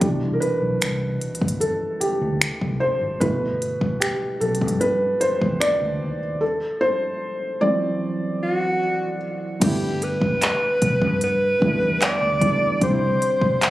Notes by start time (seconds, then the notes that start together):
0.00 C2 B2 E3 D4 G4, kick, closed hi-hat
0.33 A#4
0.40 B4, closed hi-hat
0.61 B1
0.81 C2, finger snap, closed hi-hat
1.21 closed hi-hat
1.35 closed hi-hat
1.41 G1, kick
1.48 closed hi-hat
1.60 A4, closed hi-hat
2.00 G4, muted fingered electric bass stroke, closed hi-hat
2.21 D2
2.41 finger snap, muted fingered electric bass stroke, closed hi-hat
2.61 C2, kick
2.80 C5
3.01 G#1
3.20 G1 B2 A3 E4 B4, kick, closed hi-hat
3.62 closed hi-hat
3.81 muted fingered electric bass stroke, kick
4.00 G4, finger snap, closed hi-hat
4.40 B1 A4, closed hi-hat
4.55 closed hi-hat
4.61 G2, kick
4.68 closed hi-hat
4.81 B4, closed hi-hat
5.21 C5, muted fingered electric bass stroke, closed hi-hat
5.42 E2, kick
5.60 D5, finger snap, closed hi-hat
5.82 D2
6.02 D#2
6.41 A4
6.81 C5
7.61 E3 F#3 C4 D5
8.43 F#4
9.60 G1 D3 G3 A3 B3 G4, kick, closed hi-hat, crash
9.64 E4
10.02 B4, closed hi-hat
10.21 kick
10.42 clap, closed hi-hat
10.82 B1, kick, closed hi-hat
11.02 G2, kick
11.21 B4, closed hi-hat
11.60 D3 G3 A3 B3, muted fingered electric bass stroke, kick
11.64 E4
11.81 E2
12.02 D5, clap, closed hi-hat
12.21 D2
12.40 C#2 E3 G3 A3 B3, kick, closed hi-hat
12.44 D4
12.80 C2 D3 G3 C4 C5, kick, closed hi-hat
12.84 D4
12.91 E4
13.22 closed hi-hat
13.41 B1, kick
13.61 C2, clap, closed hi-hat